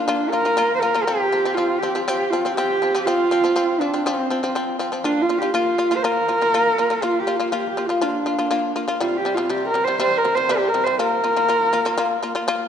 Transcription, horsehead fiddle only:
0, 0, Header, 1, 2, 480
1, 0, Start_track
1, 0, Tempo, 495868
1, 1038, Time_signature, 4, 2, 24, 8
1, 12275, End_track
2, 0, Start_track
2, 0, Title_t, "Horsehead fiddle"
2, 0, Program_c, 0, 110
2, 45, Note_on_c, 0, 62, 78
2, 286, Note_on_c, 0, 70, 96
2, 301, Note_off_c, 0, 62, 0
2, 722, Note_off_c, 0, 70, 0
2, 731, Note_on_c, 0, 72, 68
2, 767, Note_on_c, 0, 70, 91
2, 781, Note_off_c, 0, 72, 0
2, 1004, Note_on_c, 0, 67, 98
2, 1019, Note_off_c, 0, 70, 0
2, 1491, Note_on_c, 0, 65, 91
2, 1505, Note_off_c, 0, 67, 0
2, 1728, Note_on_c, 0, 67, 89
2, 1742, Note_off_c, 0, 65, 0
2, 1974, Note_off_c, 0, 67, 0
2, 1980, Note_on_c, 0, 67, 81
2, 2229, Note_on_c, 0, 65, 82
2, 2243, Note_off_c, 0, 67, 0
2, 2456, Note_off_c, 0, 65, 0
2, 2462, Note_on_c, 0, 67, 93
2, 2954, Note_on_c, 0, 65, 102
2, 2969, Note_off_c, 0, 67, 0
2, 3679, Note_on_c, 0, 62, 79
2, 3694, Note_off_c, 0, 65, 0
2, 3922, Note_on_c, 0, 60, 70
2, 3936, Note_off_c, 0, 62, 0
2, 4647, Note_off_c, 0, 60, 0
2, 4880, Note_on_c, 0, 62, 88
2, 5053, Note_on_c, 0, 65, 86
2, 5067, Note_off_c, 0, 62, 0
2, 5212, Note_on_c, 0, 67, 87
2, 5227, Note_off_c, 0, 65, 0
2, 5363, Note_off_c, 0, 67, 0
2, 5368, Note_on_c, 0, 65, 87
2, 5770, Note_on_c, 0, 72, 77
2, 5784, Note_off_c, 0, 65, 0
2, 5836, Note_on_c, 0, 70, 99
2, 5851, Note_off_c, 0, 72, 0
2, 6808, Note_on_c, 0, 65, 92
2, 6823, Note_off_c, 0, 70, 0
2, 6964, Note_on_c, 0, 67, 84
2, 6979, Note_off_c, 0, 65, 0
2, 7075, Note_off_c, 0, 67, 0
2, 7075, Note_on_c, 0, 67, 63
2, 7122, Note_on_c, 0, 65, 76
2, 7137, Note_off_c, 0, 67, 0
2, 7278, Note_on_c, 0, 67, 76
2, 7292, Note_off_c, 0, 65, 0
2, 7442, Note_off_c, 0, 67, 0
2, 7449, Note_on_c, 0, 67, 69
2, 7608, Note_on_c, 0, 65, 76
2, 7623, Note_off_c, 0, 67, 0
2, 7773, Note_on_c, 0, 62, 67
2, 7787, Note_off_c, 0, 65, 0
2, 8486, Note_off_c, 0, 62, 0
2, 8718, Note_on_c, 0, 65, 81
2, 8878, Note_on_c, 0, 67, 90
2, 8892, Note_off_c, 0, 65, 0
2, 9046, Note_on_c, 0, 65, 76
2, 9060, Note_off_c, 0, 67, 0
2, 9198, Note_on_c, 0, 67, 89
2, 9213, Note_off_c, 0, 65, 0
2, 9358, Note_off_c, 0, 67, 0
2, 9366, Note_on_c, 0, 70, 82
2, 9528, Note_on_c, 0, 72, 90
2, 9543, Note_off_c, 0, 70, 0
2, 9683, Note_off_c, 0, 72, 0
2, 9687, Note_on_c, 0, 72, 92
2, 9852, Note_on_c, 0, 70, 95
2, 9867, Note_off_c, 0, 72, 0
2, 10019, Note_on_c, 0, 72, 96
2, 10034, Note_off_c, 0, 70, 0
2, 10179, Note_on_c, 0, 67, 89
2, 10194, Note_off_c, 0, 72, 0
2, 10340, Note_on_c, 0, 70, 93
2, 10354, Note_off_c, 0, 67, 0
2, 10488, Note_on_c, 0, 72, 91
2, 10502, Note_off_c, 0, 70, 0
2, 10641, Note_off_c, 0, 72, 0
2, 10652, Note_on_c, 0, 70, 93
2, 12042, Note_off_c, 0, 70, 0
2, 12275, End_track
0, 0, End_of_file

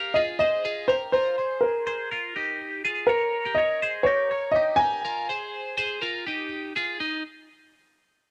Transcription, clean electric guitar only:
0, 0, Header, 1, 2, 480
1, 0, Start_track
1, 0, Tempo, 488202
1, 1117, Time_signature, 4, 2, 24, 8
1, 8169, End_track
2, 0, Start_track
2, 0, Title_t, "Clean electric guitar"
2, 0, Program_c, 0, 27
2, 0, Note_on_c, 0, 67, 56
2, 0, Note_on_c, 0, 70, 75
2, 150, Note_off_c, 0, 67, 0
2, 154, Note_off_c, 0, 70, 0
2, 154, Note_on_c, 0, 68, 71
2, 161, Note_on_c, 0, 65, 62
2, 389, Note_off_c, 0, 68, 0
2, 396, Note_on_c, 0, 72, 60
2, 398, Note_off_c, 0, 65, 0
2, 401, Note_on_c, 0, 68, 46
2, 626, Note_off_c, 0, 68, 0
2, 636, Note_off_c, 0, 72, 0
2, 638, Note_on_c, 0, 68, 72
2, 645, Note_on_c, 0, 65, 57
2, 876, Note_on_c, 0, 70, 70
2, 877, Note_off_c, 0, 68, 0
2, 881, Note_off_c, 0, 65, 0
2, 884, Note_on_c, 0, 67, 56
2, 1102, Note_off_c, 0, 70, 0
2, 1113, Note_on_c, 0, 70, 78
2, 1120, Note_off_c, 0, 67, 0
2, 1125, Note_on_c, 0, 65, 65
2, 1353, Note_off_c, 0, 70, 0
2, 1357, Note_on_c, 0, 72, 60
2, 1361, Note_off_c, 0, 65, 0
2, 1365, Note_on_c, 0, 68, 52
2, 1809, Note_off_c, 0, 72, 0
2, 1813, Note_off_c, 0, 68, 0
2, 1836, Note_on_c, 0, 72, 80
2, 1844, Note_on_c, 0, 68, 55
2, 2075, Note_off_c, 0, 72, 0
2, 2079, Note_on_c, 0, 70, 77
2, 2081, Note_off_c, 0, 68, 0
2, 2087, Note_on_c, 0, 65, 60
2, 2314, Note_off_c, 0, 65, 0
2, 2317, Note_on_c, 0, 67, 66
2, 2318, Note_off_c, 0, 70, 0
2, 2323, Note_on_c, 0, 63, 45
2, 2769, Note_off_c, 0, 67, 0
2, 2772, Note_off_c, 0, 63, 0
2, 2798, Note_on_c, 0, 68, 65
2, 2804, Note_on_c, 0, 65, 55
2, 3038, Note_off_c, 0, 68, 0
2, 3039, Note_on_c, 0, 73, 82
2, 3041, Note_off_c, 0, 65, 0
2, 3048, Note_on_c, 0, 70, 63
2, 3377, Note_off_c, 0, 73, 0
2, 3382, Note_off_c, 0, 70, 0
2, 3395, Note_on_c, 0, 70, 77
2, 3404, Note_on_c, 0, 67, 57
2, 3513, Note_off_c, 0, 70, 0
2, 3518, Note_on_c, 0, 73, 72
2, 3521, Note_off_c, 0, 67, 0
2, 3525, Note_on_c, 0, 70, 60
2, 3755, Note_off_c, 0, 73, 0
2, 3759, Note_on_c, 0, 72, 77
2, 3762, Note_off_c, 0, 70, 0
2, 3768, Note_on_c, 0, 68, 65
2, 3991, Note_off_c, 0, 68, 0
2, 3995, Note_on_c, 0, 70, 73
2, 3999, Note_off_c, 0, 72, 0
2, 4004, Note_on_c, 0, 67, 54
2, 4234, Note_off_c, 0, 70, 0
2, 4236, Note_on_c, 0, 73, 62
2, 4241, Note_off_c, 0, 67, 0
2, 4246, Note_on_c, 0, 70, 47
2, 4472, Note_off_c, 0, 70, 0
2, 4476, Note_on_c, 0, 67, 76
2, 4477, Note_off_c, 0, 73, 0
2, 4483, Note_on_c, 0, 63, 62
2, 4708, Note_off_c, 0, 67, 0
2, 4712, Note_on_c, 0, 70, 64
2, 4721, Note_off_c, 0, 63, 0
2, 4725, Note_on_c, 0, 67, 56
2, 4950, Note_off_c, 0, 70, 0
2, 4961, Note_on_c, 0, 70, 83
2, 4962, Note_off_c, 0, 67, 0
2, 4968, Note_on_c, 0, 65, 67
2, 5200, Note_off_c, 0, 70, 0
2, 5203, Note_off_c, 0, 65, 0
2, 5203, Note_on_c, 0, 72, 70
2, 5211, Note_on_c, 0, 68, 59
2, 5651, Note_off_c, 0, 72, 0
2, 5655, Note_off_c, 0, 68, 0
2, 5679, Note_on_c, 0, 72, 76
2, 5689, Note_on_c, 0, 68, 62
2, 5912, Note_off_c, 0, 68, 0
2, 5916, Note_on_c, 0, 70, 78
2, 5918, Note_off_c, 0, 72, 0
2, 5924, Note_on_c, 0, 65, 63
2, 6156, Note_off_c, 0, 70, 0
2, 6160, Note_off_c, 0, 65, 0
2, 6161, Note_on_c, 0, 67, 69
2, 6173, Note_on_c, 0, 63, 50
2, 6610, Note_off_c, 0, 67, 0
2, 6616, Note_off_c, 0, 63, 0
2, 6647, Note_on_c, 0, 68, 70
2, 6655, Note_on_c, 0, 65, 57
2, 6881, Note_off_c, 0, 65, 0
2, 6881, Note_off_c, 0, 68, 0
2, 6885, Note_on_c, 0, 63, 68
2, 7103, Note_off_c, 0, 63, 0
2, 8169, End_track
0, 0, End_of_file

